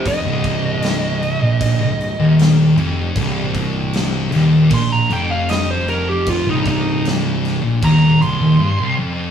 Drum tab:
CC |xxxxxxxx|xxxxxxxx|xxxxxx--|
SD |--o---o-|--oo--o-|--oo----|
BD |oo--o---|oo--o---|oo--o---|